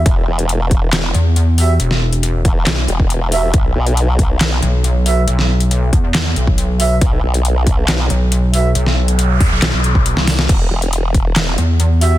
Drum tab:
CC |----------------|----------------|----------------|----------------|
HH |x--xx-x-x-x-x-o-|x--xx-x-x-x-x-o-|x--xx-x-x-x-x-o-|x--xx-x-x-x-x-o-|
CP |--------x-------|--------x-------|--------x-------|--------x-------|
SD |--------o-------|-o------o-------|--------o-------|-o------o-------|
BD |o-----o---------|------o----o----|o-----o---------|------o----o----|

CC |----------------|----------------|x---------------|
HH |x--xx-x-x-x-x-o-|x--xx-o-x-x-x-o-|x--xx-x-x-x-x-o-|
CP |--------x-------|--------x-------|--------x-------|
SD |--------o-------|-o------o----ooo|--------o-------|
BD |o-----o---------|------o----o----|o-----o---------|